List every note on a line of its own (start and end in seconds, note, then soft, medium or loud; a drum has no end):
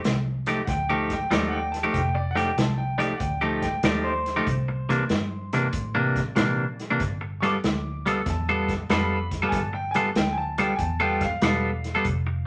0.04 0.60 C2 medium
0.04 snare loud
0.04 closed hi-hat medium
0.46 0.60 F3 medium
0.46 0.61 A3 medium
0.46 0.61 D#4 medium
0.46 0.61 G4 medium
0.46 snare soft
0.46 closed hi-hat medium
0.65 1.22 D2 medium
0.65 0.70 F#5 medium
0.65 0.89 G5 medium
0.65 kick loud
0.65 snare soft
0.65 closed hi-hat medium
0.89 1.14 F3 medium
0.89 1.14 A3 medium
0.89 1.14 D#4 medium
0.89 1.14 G4 medium
0.89 1.10 A5 medium
1.10 1.32 G5 medium
1.10 kick medium
1.10 snare soft
1.10 closed hi-hat medium
1.31 1.86 D#2 medium
1.31 1.58 F3 medium
1.31 1.59 A3 loud
1.31 1.59 D#4 medium
1.31 1.59 G4 medium
1.31 1.52 D5 medium
1.31 snare loud
1.31 closed hi-hat medium
1.48 1.56 F#5 medium
1.53 1.73 G5 loud
1.72 1.93 A5 medium
1.72 snare soft
1.72 closed hi-hat medium
1.83 2.01 F3 medium
1.83 2.01 A3 medium
1.83 2.01 D#4 medium
1.83 2.00 G4 medium
1.93 2.49 F1 medium
1.93 2.14 G5 medium
1.93 kick medium
1.93 snare soft
1.93 closed hi-hat medium
2.15 2.35 D5 medium
2.15 muted clean electric guitar stroke medium
2.31 2.37 F#5 medium
2.35 2.50 F3 medium
2.35 2.50 A3 medium
2.35 2.50 D#4 medium
2.35 2.50 G4 medium
2.35 2.56 G5 medium
2.35 snare soft
2.35 closed hi-hat medium
2.57 3.12 C2 medium
2.57 2.78 A5 medium
2.57 snare medium
2.57 closed hi-hat medium
2.78 2.99 G5 medium
2.98 3.12 F3 medium
2.98 3.13 A3 medium
2.98 3.13 D#4 medium
2.98 3.13 G4 loud
2.98 3.19 D5 medium
2.98 snare soft
2.98 closed hi-hat medium
3.16 3.75 D2 medium
3.16 3.21 F#5 medium
3.20 3.41 G5 medium
3.20 kick loud
3.20 closed hi-hat medium
3.41 3.66 F3 medium
3.41 3.67 A3 medium
3.41 3.66 D#4 medium
3.41 3.66 G4 medium
3.41 3.62 A5 medium
3.62 3.83 G5 medium
3.62 kick medium
3.62 snare soft
3.62 closed hi-hat medium
3.83 4.38 D#2 medium
3.83 4.11 F3 medium
3.83 4.12 A3 medium
3.83 4.12 D#4 medium
3.83 4.12 G4 medium
3.83 4.04 D5 medium
3.83 snare loud
3.83 closed hi-hat medium
4.04 5.90 C5 loud
4.26 snare soft
4.26 closed hi-hat medium
4.36 4.47 F3 medium
4.36 4.47 A3 medium
4.36 4.47 D#4 medium
4.36 4.47 G4 medium
4.47 5.02 C2 medium
4.47 kick medium
4.47 closed hi-hat medium
4.68 muted clean electric guitar stroke medium
4.89 5.03 C3 medium
4.89 5.03 E3 medium
4.89 5.03 A#3 medium
4.89 5.04 D4 medium
4.89 snare soft
4.89 closed hi-hat medium
5.09 5.65 G2 medium
5.09 snare loud
5.09 closed hi-hat medium
5.53 5.67 C3 medium
5.53 5.67 E3 medium
5.53 5.67 A#3 medium
5.53 5.67 D4 medium
5.53 snare soft
5.53 closed hi-hat medium
5.73 6.28 A2 medium
5.73 kick loud
5.73 closed hi-hat medium
5.95 6.20 C3 medium
5.95 6.19 E3 medium
5.95 6.19 A#3 medium
5.95 6.19 D4 medium
6.16 kick medium
6.16 snare soft
6.16 closed hi-hat medium
6.36 6.92 A#2 medium
6.36 6.64 C3 medium
6.36 6.64 E3 medium
6.36 6.64 A#3 medium
6.36 6.64 D4 medium
6.36 snare loud
6.36 closed hi-hat medium
6.79 snare soft
6.79 closed hi-hat medium
6.90 7.01 C3 medium
6.90 7.01 E3 medium
6.90 7.01 A#3 medium
6.90 7.00 D4 medium
7.00 7.55 G1 medium
7.00 kick medium
7.00 snare soft
7.00 closed hi-hat medium
7.21 muted clean electric guitar stroke medium
7.40 7.56 G3 medium
7.40 7.56 B3 medium
7.40 7.56 F4 medium
7.40 7.56 A4 medium
7.40 7.43 C#6 medium
7.40 snare soft
7.40 closed hi-hat medium
7.45 8.05 D6 loud
7.64 8.18 D2 medium
7.64 snare loud
7.64 closed hi-hat medium
8.06 8.19 G3 medium
8.06 8.20 B3 medium
8.06 8.20 F4 medium
8.06 8.20 A4 medium
8.06 8.08 D#6 medium
8.06 snare soft
8.06 closed hi-hat medium
8.10 8.28 E6 medium
8.26 8.81 E2 medium
8.26 8.89 A5 medium
8.26 kick loud
8.26 snare soft
8.26 closed hi-hat medium
8.49 8.73 G3 medium
8.49 8.73 B3 medium
8.49 8.73 F4 medium
8.49 8.73 A4 medium
8.69 kick medium
8.69 snare soft
8.69 closed hi-hat medium
8.89 9.44 F2 medium
8.89 9.17 G3 medium
8.89 9.17 B3 medium
8.89 9.18 F4 medium
8.89 9.18 A4 medium
8.89 9.31 B5 loud
8.89 snare loud
8.89 closed hi-hat medium
9.31 kick medium
9.31 snare soft
9.31 closed hi-hat medium
9.42 9.59 G3 medium
9.42 9.59 B3 medium
9.42 9.59 F4 medium
9.42 9.59 A4 medium
9.49 10.07 G1 medium
9.49 9.54 G#5 medium
9.49 kick medium
9.49 closed hi-hat medium
9.53 9.73 A5 loud
9.53 snare soft
9.73 9.95 G5 medium
9.73 muted clean electric guitar stroke soft
9.91 9.97 G#5 medium
9.91 snare soft
9.91 closed hi-hat medium
9.95 10.09 G3 medium
9.95 10.09 B3 medium
9.95 10.09 F4 medium
9.95 10.09 A4 medium
9.95 10.16 A5 loud
10.15 10.70 D2 medium
10.15 10.37 G5 medium
10.15 snare loud
10.15 closed hi-hat medium
10.33 10.41 G#5 medium
10.38 10.58 A5 loud
10.58 10.72 G3 medium
10.58 10.72 B3 medium
10.58 10.72 F4 medium
10.58 10.72 A4 medium
10.58 10.79 G5 loud
10.58 snare soft
10.58 closed hi-hat medium
10.76 11.33 E2 medium
10.76 10.80 G#5 medium
10.76 kick medium
10.76 closed hi-hat medium
10.80 11.00 A5 loud
11.00 11.25 G3 medium
11.00 11.25 B3 medium
11.00 11.25 F4 loud
11.00 11.24 A4 loud
11.00 11.21 G5 medium
11.21 12.47 F5 loud
11.21 kick medium
11.21 snare soft
11.21 closed hi-hat medium
11.42 11.97 E1 medium
11.42 11.70 G3 medium
11.42 11.70 B3 medium
11.42 11.70 F4 medium
11.42 11.71 A4 medium
11.42 snare loud
11.42 closed hi-hat medium
11.84 snare soft
11.84 closed hi-hat medium
11.95 12.06 G3 medium
11.95 12.06 B3 medium
11.95 12.06 F4 medium
11.95 12.05 A4 medium
12.05 12.47 F1 medium
12.05 kick medium
12.05 closed hi-hat medium
12.27 muted clean electric guitar stroke medium